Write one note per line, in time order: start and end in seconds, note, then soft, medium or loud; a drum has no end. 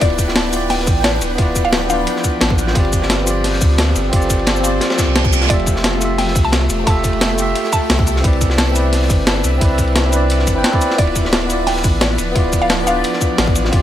0.00 0.89 D1 medium
0.00 5.46 F3 medium
0.00 0.48 B3 medium
0.00 0.50 E4 medium
0.00 0.51 F4 medium
0.00 2.72 B4 medium
0.00 0.22 D5 medium
0.00 2.72 G5 medium
0.00 kick loud
0.00 closed hi-hat medium
0.00 ride medium
0.05 0.53 D5 loud
0.10 ride soft
0.18 kick medium
0.18 closed hi-hat medium
0.18 ride medium
0.18 cabasa medium
0.28 snare medium
0.36 snare loud
0.36 closed hi-hat medium
0.36 ride medium
0.45 ride soft
0.49 1.34 B3 medium
0.49 1.36 E4 medium
0.49 closed hi-hat medium
0.49 ride medium
0.49 cabasa medium
0.54 1.37 F4 medium
0.54 1.38 D5 medium
0.70 0.91 G5 medium
0.70 snare soft
0.70 closed hi-hat medium
0.70 open hi-hat medium
0.79 snare soft
0.87 1.20 A1 loud
0.87 kick loud
0.87 closed hi-hat medium
0.87 ride medium
0.87 cabasa medium
1.04 1.25 D5 medium
1.04 snare loud
1.04 closed hi-hat medium
1.04 ride medium
1.21 1.37 D1 loud
1.21 closed hi-hat medium
1.21 ride medium
1.21 cabasa medium
1.35 2.06 D1 loud
1.35 1.85 B3 medium
1.35 1.87 E4 medium
1.35 kick loud
1.35 closed hi-hat medium
1.35 ride medium
1.40 1.89 F4 medium
1.40 1.90 D5 medium
1.56 kick medium
1.56 closed hi-hat medium
1.56 ride medium
1.56 cabasa medium
1.65 1.85 F5 medium
1.65 ride soft
1.73 snare loud
1.73 closed hi-hat medium
1.73 ride medium
1.87 2.72 B3 medium
1.87 2.73 D4 medium
1.87 2.38 F5 medium
1.87 closed hi-hat medium
1.87 ride medium
1.87 cabasa medium
1.91 2.73 F4 medium
1.91 2.75 D5 medium
2.07 closed hi-hat medium
2.07 ride medium
2.16 snare soft
2.24 kick medium
2.24 closed hi-hat medium
2.24 ride medium
2.24 cabasa medium
2.41 2.74 A1 loud
2.41 snare loud
2.41 closed hi-hat medium
2.41 ride medium
2.50 kick loud
2.58 closed hi-hat medium
2.58 ride medium
2.58 cabasa medium
2.67 snare medium
2.72 3.63 G1 medium
2.72 3.22 C4 medium
2.72 5.47 C4 medium
2.72 3.25 F4 medium
2.72 5.47 A4 medium
2.72 kick loud
2.72 closed hi-hat medium
2.72 ride medium
2.77 3.26 G4 medium
2.77 3.27 D5 medium
2.85 ride soft
2.93 kick medium
2.93 closed hi-hat medium
2.93 ride medium
2.93 cabasa medium
3.02 snare medium
3.10 snare loud
3.10 closed hi-hat medium
3.10 ride medium
3.19 ride soft
3.23 4.08 C4 medium
3.23 4.10 F4 medium
3.23 closed hi-hat medium
3.23 ride medium
3.23 cabasa medium
3.28 4.11 G4 medium
3.28 4.12 D5 medium
3.44 snare soft
3.44 closed hi-hat loud
3.44 open hi-hat medium
3.53 snare soft
3.61 3.94 D2 loud
3.61 kick loud
3.61 closed hi-hat medium
3.61 ride medium
3.61 cabasa medium
3.78 snare loud
3.78 closed hi-hat medium
3.78 ride medium
3.95 4.11 G1 loud
3.95 closed hi-hat medium
3.95 ride medium
3.95 cabasa medium
4.09 4.80 G1 medium
4.09 4.59 C4 medium
4.09 4.62 F4 medium
4.09 kick loud
4.09 closed hi-hat loud
4.09 ride medium
4.14 4.63 G4 medium
4.14 4.64 D5 loud
4.22 cabasa soft
4.30 kick medium
4.30 closed hi-hat medium
4.30 ride medium
4.30 cabasa medium
4.39 ride soft
4.46 snare loud
4.46 closed hi-hat loud
4.46 ride medium
4.56 cabasa soft
4.61 5.46 C4 medium
4.61 5.47 F4 medium
4.61 closed hi-hat medium
4.61 ride medium
4.61 cabasa medium
4.65 5.49 G4 medium
4.65 5.50 D5 medium
4.81 snare loud
4.81 closed hi-hat loud
4.81 ride medium
4.81 reverse cymbal medium
4.90 snare loud
4.90 ride medium
4.98 kick medium
4.98 snare loud
4.98 snare soft
4.98 closed hi-hat medium
4.98 ride medium
4.98 cabasa medium
5.07 5.49 C2 medium
5.16 snare loud
5.16 closed hi-hat loud
5.25 kick loud
5.25 cabasa soft
5.33 closed hi-hat medium
5.33 ride medium
5.33 cabasa medium
5.41 snare medium
5.41 closed hi-hat soft
5.46 6.37 F1 loud
5.46 5.97 A3 medium
5.46 8.21 A3 medium
5.46 5.99 F4 medium
5.46 8.21 G4 medium
5.46 5.71 D5 medium
5.46 10.94 E5 medium
5.46 kick loud
5.46 closed hi-hat loud
5.46 ride medium
5.51 6.00 G4 medium
5.51 6.01 E5 loud
5.59 ride soft
5.66 kick medium
5.66 closed hi-hat medium
5.66 ride medium
5.66 cabasa medium
5.76 snare medium
5.84 snare loud
5.84 closed hi-hat loud
5.84 ride medium
5.93 ride soft
5.98 6.82 A3 medium
5.98 6.85 F4 medium
5.98 closed hi-hat medium
5.98 ride medium
5.98 cabasa medium
6.03 6.86 G4 medium
6.03 6.87 E5 medium
6.18 6.39 G5 medium
6.18 snare soft
6.18 closed hi-hat medium
6.18 open hi-hat medium
6.27 snare soft
6.35 6.69 C2 loud
6.35 kick loud
6.35 closed hi-hat medium
6.35 ride medium
6.35 cabasa medium
6.45 6.70 A5 medium
6.52 snare loud
6.52 closed hi-hat loud
6.52 ride medium
6.70 6.85 F1 medium
6.70 closed hi-hat medium
6.70 ride medium
6.70 cabasa medium
6.83 7.54 F1 loud
6.83 7.34 A3 medium
6.83 7.36 F4 medium
6.83 7.08 A5 medium
6.83 kick loud
6.83 closed hi-hat loud
6.83 ride medium
6.88 7.37 G4 medium
6.88 7.38 E5 loud
7.04 kick medium
7.04 closed hi-hat medium
7.04 ride medium
7.04 cabasa medium
7.13 ride soft
7.21 snare loud
7.21 closed hi-hat loud
7.21 ride medium
7.35 8.21 A3 medium
7.35 8.22 F4 medium
7.35 closed hi-hat medium
7.35 cabasa medium
7.39 8.23 G4 medium
7.39 8.24 E5 medium
7.39 ride medium
7.55 closed hi-hat medium
7.55 ride medium
7.64 snare soft
7.72 8.21 A5 medium
7.72 kick medium
7.72 closed hi-hat medium
7.72 ride medium
7.72 cabasa medium
7.90 8.23 C2 loud
7.90 snare loud
7.90 closed hi-hat loud
7.90 ride medium
7.99 kick loud
8.07 closed hi-hat medium
8.07 ride medium
8.07 cabasa medium
8.16 snare medium
8.21 9.11 C2 medium
8.21 8.71 C4 medium
8.21 10.96 D4 medium
8.21 8.73 E4 medium
8.21 13.69 B4 medium
8.21 kick loud
8.21 closed hi-hat loud
8.25 8.74 B4 medium
8.25 8.75 D5 loud
8.25 ride medium
8.33 ride soft
8.41 kick medium
8.41 closed hi-hat medium
8.41 ride medium
8.41 cabasa medium
8.50 snare medium
8.58 snare loud
8.58 closed hi-hat loud
8.58 ride medium
8.67 ride soft
8.72 9.57 C4 medium
8.72 9.59 E4 medium
8.72 closed hi-hat medium
8.72 ride medium
8.72 cabasa medium
8.77 9.60 B4 medium
8.77 9.61 D5 medium
8.93 snare soft
8.93 closed hi-hat loud
8.93 open hi-hat medium
9.02 snare soft
9.10 9.43 G1 loud
9.10 kick loud
9.10 closed hi-hat medium
9.10 ride medium
9.10 cabasa medium
9.27 snare loud
9.27 closed hi-hat loud
9.27 ride medium
9.44 9.60 C2 medium
9.44 closed hi-hat medium
9.44 ride medium
9.44 cabasa medium
9.58 10.49 C2 loud
9.58 10.08 C4 medium
9.58 10.10 E4 medium
9.58 kick loud
9.58 closed hi-hat medium
9.58 ride medium
9.62 10.11 B4 medium
9.62 10.13 D5 medium
9.78 kick medium
9.78 closed hi-hat medium
9.78 ride medium
9.78 cabasa medium
9.87 ride soft
9.95 snare loud
9.95 closed hi-hat medium
9.95 ride medium
10.09 10.53 C4 medium
10.09 10.54 E4 medium
10.09 closed hi-hat medium
10.09 ride medium
10.09 cabasa medium
10.14 10.55 B4 medium
10.14 10.56 D5 medium
10.30 closed hi-hat medium
10.30 ride medium
10.39 snare soft
10.47 10.63 G1 loud
10.47 kick medium
10.47 closed hi-hat medium
10.47 ride medium
10.47 cabasa medium
10.54 10.70 C4 medium
10.54 10.71 E4 medium
10.54 10.71 B4 medium
10.54 10.72 G5 loud
10.64 snare loud
10.64 closed hi-hat medium
10.64 ride medium
10.71 10.96 C4 loud
10.71 10.96 E4 medium
10.71 10.97 B4 medium
10.71 10.97 D5 loud
10.71 kick loud
10.81 closed hi-hat medium
10.81 ride medium
10.81 cabasa medium
10.90 snare medium
10.95 11.86 D1 loud
10.95 13.70 F3 medium
10.95 11.45 B3 medium
10.95 11.47 E4 medium
10.95 13.70 D5 medium
10.95 11.19 D5 medium
10.95 kick loud
10.95 closed hi-hat medium
10.95 ride medium
11.00 11.49 F4 medium
11.00 11.50 D5 medium
11.07 ride soft
11.16 kick medium
11.16 closed hi-hat medium
11.16 ride medium
11.16 cabasa medium
11.25 snare medium
11.33 snare loud
11.33 closed hi-hat medium
11.33 ride medium
11.42 ride soft
11.46 12.31 B3 medium
11.46 12.33 E4 medium
11.46 closed hi-hat medium
11.46 ride medium
11.46 cabasa medium
11.51 12.34 F4 medium
11.51 12.35 D5 medium
11.67 11.88 G5 medium
11.67 snare soft
11.67 closed hi-hat medium
11.67 open hi-hat medium
11.76 snare soft
11.84 12.17 A1 loud
11.84 kick loud
11.84 closed hi-hat medium
11.84 ride medium
11.84 cabasa medium
12.01 12.22 D5 medium
12.01 snare loud
12.01 closed hi-hat medium
12.01 ride medium
12.18 12.34 D1 loud
12.18 closed hi-hat medium
12.18 ride medium
12.18 cabasa medium
12.32 13.03 D1 loud
12.32 12.82 B3 medium
12.32 12.84 E4 medium
12.32 kick loud
12.32 closed hi-hat medium
12.32 ride medium
12.37 12.86 F4 medium
12.37 12.87 D5 medium
12.53 kick medium
12.53 closed hi-hat medium
12.53 ride medium
12.53 cabasa medium
12.62 12.82 F5 loud
12.62 ride soft
12.69 snare loud
12.69 closed hi-hat medium
12.69 ride medium
12.83 13.69 B3 medium
12.83 13.70 D4 medium
12.83 13.35 F5 medium
12.83 closed hi-hat medium
12.83 cabasa medium
12.88 13.70 F4 medium
12.88 13.72 D5 loud
12.88 ride medium
13.04 closed hi-hat medium
13.04 ride loud
13.13 snare soft
13.21 kick medium
13.21 closed hi-hat medium
13.21 ride medium
13.21 cabasa medium
13.38 13.71 A1 loud
13.38 snare loud
13.38 closed hi-hat medium
13.38 ride loud
13.47 kick loud
13.55 closed hi-hat medium
13.55 ride medium
13.55 cabasa medium
13.65 snare medium
13.69 13.82 G1 loud
13.69 13.82 C4 medium
13.69 13.82 F4 medium
13.69 kick loud
13.69 closed hi-hat medium
13.69 ride medium
13.74 13.82 G4 medium
13.74 13.82 D5 loud